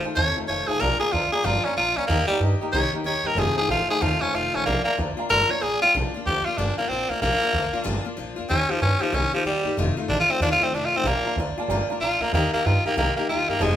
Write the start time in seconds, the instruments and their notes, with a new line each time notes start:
0.03 steel-string acoustic guitar D#3 A3 D#4 F4, upright piano C5 F5 A5, muted upright bass stroke
0.15 upright bass D#2, steel-string acoustic guitar F2 C3 D#3 A3 D#4 F4, upright piano C5 F5 A5, tenor saxophone C#5
0.37 steel-string acoustic guitar D#3 A3 D#4 F4, upright piano C5 F5 A5
0.48 upright bass F1, steel-string acoustic guitar D#3 A3 D#4 F4, upright piano C5 F5 A5, tenor saxophone C#5
0.67 upright bass A1, steel-string acoustic guitar D#3 A3 D#4 F4, tenor saxophone G#4, upright piano C5 F5 A5
0.80 upright bass A#1, steel-string acoustic guitar A#2 F3 A#3 D4 F4, tenor saxophone A#4, upright piano D5 F5 A#5
0.99 steel-string acoustic guitar A#3 D4 F4, tenor saxophone G#4, upright piano D5 A#5, muted upright bass stroke
1.11 upright bass D2, steel-string acoustic guitar F3 A#3 D4 F4, tenor saxophone F4, upright piano D5 F5 A#5
1.32 steel-string acoustic guitar A#3 D4 F4, tenor saxophone G#4, upright piano D5 F5 A#5
1.43 upright bass G1, steel-string acoustic guitar A#2 F3 A#3 D4 F4, tenor saxophone F4, upright piano D5 F5 A#5
1.64 steel-string acoustic guitar A#3 D4 F4, tenor saxophone C#4, upright piano D5 F5 A#5
1.77 upright bass A#1, steel-string acoustic guitar F3 A#3 D4 F4, tenor saxophone F4, upright piano D5 F5 A#5
1.96 upright bass D2, steel-string acoustic guitar A#3 D4 F4, tenor saxophone C#4, upright piano D5 F5 A#5
2.07 upright bass D#2, steel-string acoustic guitar D#3 A#3 D#4 G4, tenor saxophone A#3, upright piano D#5 G5 A#5
2.27 tenor saxophone G3, steel-string acoustic guitar A#3 D#4 G4, upright piano D#5 G5 A#5, muted upright bass stroke
2.40 upright bass G2, steel-string acoustic guitar D#3 A#3 D#4 G4, upright piano D#5 G5 A#5
2.60 steel-string acoustic guitar A#3 D#4 G4, upright piano D#5 G5 A#5, muted upright bass stroke
2.72 upright bass C2, steel-string acoustic guitar D#3 A#3 D#4 G4, tenor saxophone C#5, upright piano D#5 G5 A#5
2.92 steel-string acoustic guitar A#3 D#4 G4, upright piano D#5 G5 A#5, muted upright bass stroke
3.04 upright bass D#2, steel-string acoustic guitar D#3 A#3 D#4 G4, tenor saxophone C#5, upright piano D#5 G5 A#5
3.23 upright bass G2, steel-string acoustic guitar A#3 D#4 G4, tenor saxophone A#4, upright piano D#5 G5 A#5
3.35 upright bass F1, steel-string acoustic guitar F2 C3 D#3 A3 D#4 F4, tenor saxophone G#4, upright piano C5 F5 A5
3.56 steel-string acoustic guitar A3 D#4 F4, tenor saxophone G#4, upright piano C5 F5 A5, muted upright bass stroke
3.60 steel-string acoustic guitar D#3
3.68 upright bass A1, steel-string acoustic guitar D#3 A3 D#4 F4, tenor saxophone F4, upright piano C5 F5 A5
3.89 steel-string acoustic guitar D#3 A3 D#4 F4, tenor saxophone G#4, upright piano C5 F5 A5, muted upright bass stroke
4.01 upright bass D#2, steel-string acoustic guitar F2 C3 D#3 A3 D#4 F4, tenor saxophone F4, upright piano C5 F5 A5
4.21 steel-string acoustic guitar D#3 A3 D#4 F4, tenor saxophone C#4, upright piano C5 F5 A5, muted upright bass stroke
4.33 upright bass F1, steel-string acoustic guitar D#3 A3 D#4 F4, tenor saxophone F4, upright piano C5 F5 A5
4.53 upright bass A1, steel-string acoustic guitar D#3 A3 D#4 F4, tenor saxophone C#4, upright piano C5 F5 A5
4.65 upright bass A#1, steel-string acoustic guitar A#2 F3 A#3 D4 F4, tenor saxophone A#3, upright piano D5 F5 A#5
4.84 tenor saxophone A#3, steel-string acoustic guitar A#3 D4 F4, upright piano D5 F5 A#5, muted upright bass stroke
4.97 upright bass D2, steel-string acoustic guitar F3 A#3 D4 F4, upright piano D5 F5 A#5
5.17 steel-string acoustic guitar A#3 D4 F4, upright piano D5 F5 A#5, muted upright bass stroke
5.29 upright bass G1, steel-string acoustic guitar A#2 F3 A#3 D4 F4, tenor saxophone A#4, upright piano D5 F5 C6
5.50 steel-string acoustic guitar A#3 D4 F4, tenor saxophone C#5, upright piano D5 F5 A#5, muted upright bass stroke
5.61 upright bass A#1, steel-string acoustic guitar F3 A#3 D4 F4, tenor saxophone G#4, upright piano D5 F5 A#5
5.82 upright bass D2, steel-string acoustic guitar A#3 D4 F4, tenor saxophone F4, upright piano D5 F5 G5
5.94 upright bass A#1, steel-string acoustic guitar A#2 F3 A#3 D4 F4
6.14 steel-string acoustic guitar A#3 D4 F4, muted upright bass stroke
6.26 upright bass D2, steel-string acoustic guitar F3 A#3 D4 F4, tenor saxophone G4
6.45 steel-string acoustic guitar A#3 D4 F4, tenor saxophone F4, muted upright bass stroke
6.57 upright bass G1, steel-string acoustic guitar A#2 F3 A#3 D4 F4, tenor saxophone D4
6.78 tenor saxophone A#3, steel-string acoustic guitar A#3 D4 F4, muted upright bass stroke
6.89 upright bass A#1, steel-string acoustic guitar F3 A#3 D4, tenor saxophone C4
6.93 steel-string acoustic guitar F4
7.09 upright bass D2, tenor saxophone A#3, steel-string acoustic guitar A#3 D4 F4
7.21 upright bass A#1, steel-string acoustic guitar A#2 F3 A#3 D4 F4, tenor saxophone A#3
7.41 steel-string acoustic guitar A#3 D4 F4, muted upright bass stroke
7.53 upright bass D2, steel-string acoustic guitar F3 A#3 D4 F4
7.73 steel-string acoustic guitar A#3 D4 F4, muted upright bass stroke
7.84 upright bass G1, steel-string acoustic guitar A#2 F3 A#3 D4 F4
8.04 steel-string acoustic guitar A#3 D4 F4
8.17 upright bass A#1, steel-string acoustic guitar F3 A#3 D4 F4
8.36 upright bass F2, steel-string acoustic guitar A#3 D4 F4
8.49 upright bass D#2, steel-string acoustic guitar D#3 A#3 D#4 G4, tenor saxophone C#4
8.69 tenor saxophone F3, steel-string acoustic guitar A#3 D#4 G4
8.80 upright bass G2, steel-string acoustic guitar D#3 A#3 D#4 G4, tenor saxophone C#4
9.00 tenor saxophone F3, steel-string acoustic guitar A#3 D#4 G4
9.12 upright bass C2, steel-string acoustic guitar D#3 A#3 D#4 G4, tenor saxophone C#4
9.32 tenor saxophone F3, steel-string acoustic guitar A#3 D#4 G4, muted upright bass stroke
9.45 upright bass D#2, steel-string acoustic guitar D#3 A#3 D#4 G4, tenor saxophone G3
9.64 upright bass G2, steel-string acoustic guitar A#3 D#4 G4
9.77 upright bass F1, steel-string acoustic guitar F2 C3 D#3 A3 D#4 F4
9.97 steel-string acoustic guitar D#3 A3 D#4 F4, muted upright bass stroke
10.09 upright bass A1, steel-string acoustic guitar D#3 A3 D#4 F4, tenor saxophone D4
10.20 tenor saxophone F4
10.28 steel-string acoustic guitar D#3 A3 D#4 F4, tenor saxophone C4, muted upright bass stroke
10.40 upright bass D#2, steel-string acoustic guitar F2 C3 D#3 A3 D#4 F4, tenor saxophone D4
10.51 tenor saxophone F4
10.60 steel-string acoustic guitar D#3 A3 D#4 F4, tenor saxophone C4, muted upright bass stroke
10.73 upright bass F1, steel-string acoustic guitar D#3 A3 D#4 F4, tenor saxophone D4
10.85 tenor saxophone F4
10.92 upright bass A1, steel-string acoustic guitar D#3 A3 D#4 F4
10.97 tenor saxophone C4
11.04 upright bass A#1, steel-string acoustic guitar A#2 F3 A#3 D4 F4, tenor saxophone A#3, upright piano D5 F5 A#5
11.23 steel-string acoustic guitar F4, upright piano D5 F5 A#5, muted upright bass stroke
11.27 steel-string acoustic guitar A#3 D4
11.36 upright bass D2, steel-string acoustic guitar F3 A#3 D4 F4, upright piano D5 F5 A#5
11.56 steel-string acoustic guitar A#3 D4 F4, upright piano D5 F5 A5, muted upright bass stroke
11.68 upright bass G1, steel-string acoustic guitar A#2 F3 A#3 D4 F4, upright piano D5 F5 A#5
11.88 steel-string acoustic guitar D4 F4, upright piano D5 F5 A#5, muted upright bass stroke
11.92 steel-string acoustic guitar A#3
12.00 upright bass A#1, steel-string acoustic guitar F3 A#3 D4 F4, tenor saxophone F4, upright piano D5 F5 A#5
12.20 upright bass D2, tenor saxophone A#3, steel-string acoustic guitar A#3 D4 F4, upright piano D5 F5 A#5
12.33 upright bass D#2, steel-string acoustic guitar D#3 A#3 D#4 G4, tenor saxophone A#3, upright piano D#5 G5 A#5
12.52 tenor saxophone A#3, steel-string acoustic guitar A#3 D#4 G4, upright piano D#5 G5 A#5, muted upright bass stroke
12.64 upright bass G2, steel-string acoustic guitar D#3 A#3 D#4 G4, tenor saxophone F4, upright piano D#5 G5 A#5
12.84 tenor saxophone A#3, steel-string acoustic guitar A#3 D#4 G4, upright piano D#5 G5 A#5, muted upright bass stroke
12.96 upright bass C2, steel-string acoustic guitar D#3 A#3 D#4 G4, tenor saxophone A#3, upright piano D#5 G5 A#5
13.16 tenor saxophone A#3, steel-string acoustic guitar A#3 D#4 G4, upright piano D#5 G5 A#5
13.28 upright bass D#2, steel-string acoustic guitar D#3 A#3 D#4 G4, tenor saxophone F4, upright piano D#5 G5 A#5
13.48 upright bass G2, tenor saxophone A#3, steel-string acoustic guitar D#4 G4, upright piano D#5 G5 A#5
13.52 steel-string acoustic guitar A#3
13.60 upright bass F1, steel-string acoustic guitar F2 C3 D#3 A3 D#4 F4, tenor saxophone G#3, upright piano C5 F5 A5